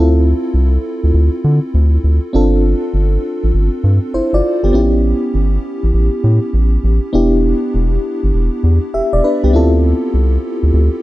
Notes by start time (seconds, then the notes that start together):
Already playing: D2 C4 E4 F4 A4
0.54 C2
1.04 D2
1.14 D2
1.44 D3
1.74 D2
2.04 D2
2.33 G1 C4 D4 F4 A4
2.94 G1
3.44 A1
3.54 G1
3.84 G2
4.13 G1 E4 C5
4.33 G1 F4 D5
4.63 G1 B3 G4
4.73 A1 B3 C#4 E4 G4
5.34 G1
5.83 A1
5.94 A1
6.24 A2
6.53 A1
6.84 A1
7.13 E1 B3 D4 E4 G4
7.74 E1
8.23 G1
8.34 E1
8.63 E2
8.94 E1 G4 E5
9.13 E1 D5
9.24 D4 B4
9.43 C2 B3 G4
9.53 D2 C4 E4 F4 A4
10.14 C2
10.63 D2
10.73 D2